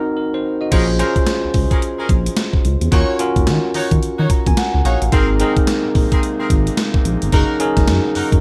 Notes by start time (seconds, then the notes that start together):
Already playing: C4 D#4 F#4 A#4
0.17 A#4
0.34 D#4 C5
0.61 F#4 D#5
0.71 A#1 C#4 F4 G#4 A#4 C5, kick, closed hi-hat, crash
0.99 C#4 F4 G#4 A#4 C5, closed hi-hat
1.16 kick, closed hi-hat
1.27 snare, closed hi-hat
1.44 C#2
1.54 C#2, kick, open hi-hat
1.71 C#4 G#4 A#4, kick, closed hi-hat
1.82 closed hi-hat
1.98 C#4 G#4 A#4
2.09 A#1, kick, closed hi-hat
2.26 closed hi-hat
2.37 snare, closed hi-hat
2.53 kick
2.65 C#2, closed hi-hat
2.81 E2, closed hi-hat
2.92 D#2 C#4 D#4 F4 F#4 A#4 C#5, kick, closed hi-hat
3.19 C#4 F4 F#4 A#4, closed hi-hat
3.36 D#2, kick, closed hi-hat
3.47 D#3, snare, closed hi-hat
3.74 D#3 D#4 F#4 C#5, open hi-hat
3.91 D#3, kick, closed hi-hat
4.03 D#3, closed hi-hat
4.18 D#3 D#4 F#4 C#5
4.30 A#5, kick, closed hi-hat
4.47 D#2 G#5, kick, closed hi-hat
4.57 F#5, snare, closed hi-hat
4.74 C#2
4.85 A#1 D#4 F#4 C#5 F5, closed hi-hat
5.02 A1, closed hi-hat
5.12 G#1 C3 G#3 A#3 C4 D#4 G#4 A#4, kick, closed hi-hat
5.40 C4 D#4 G#4 A#4, closed hi-hat
5.57 kick, closed hi-hat
5.67 snare, closed hi-hat
5.85 A#1
5.95 A#1, kick, open hi-hat
6.12 C4 G#4 A#4, kick, closed hi-hat
6.23 closed hi-hat
6.39 C4 G#4 A#4
6.50 G#1, kick, closed hi-hat
6.67 closed hi-hat
6.77 snare, closed hi-hat
6.94 kick
7.05 A#1, closed hi-hat
7.22 G1, closed hi-hat
7.32 F#1 C#3 F#3 C#4 D#4 F#4 G#4 A#4, kick, closed hi-hat
7.60 C#4 D#4 G#4 A#4, closed hi-hat
7.77 F#1, kick, snare, closed hi-hat
7.88 F#2, snare, closed hi-hat
8.15 F#2 D#4 F#4 A#4, open hi-hat
8.32 F#2, kick, closed hi-hat